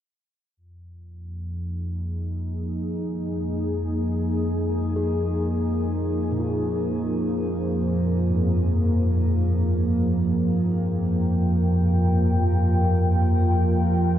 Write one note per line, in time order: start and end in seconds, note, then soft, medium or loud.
0.57 14.19 F2 medium
0.57 14.19 F3 medium
0.77 14.19 A#3 medium
1.02 10.57 D#4 medium
1.17 10.10 G#4 medium
4.96 10.90 G#4 medium
5.59 10.82 C5 medium
6.31 8.49 A#2 medium
6.39 12.34 F4 soft
8.30 14.19 G2 medium
9.83 14.19 G5 medium
10.30 14.19 F4 medium
10.51 14.19 A#4 medium